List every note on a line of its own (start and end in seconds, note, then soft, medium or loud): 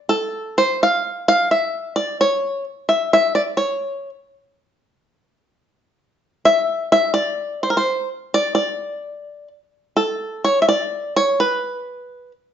0.09 0.58 A4 medium
0.58 0.80 C5 medium
0.83 1.27 F5 medium
1.28 1.50 F5 loud
1.51 1.94 E5 medium
1.96 2.17 D5 medium
2.21 2.64 C#5 medium
2.89 3.12 E5 medium
3.13 3.35 E5 loud
3.35 3.41 D5 medium
3.57 4.09 C#5 medium
6.45 6.91 E5 medium
6.92 7.13 E5 loud
7.14 7.63 D5 medium
7.63 7.69 C5 medium
7.70 7.76 A#4 medium
7.77 8.08 C5 medium
8.34 8.54 D5 medium
8.55 9.47 D5 medium
9.97 10.43 A4 medium
10.45 10.62 C#5 medium
10.62 10.68 E5 medium
10.69 11.14 D5 medium
11.16 11.38 C#5 medium
11.40 12.31 B4 medium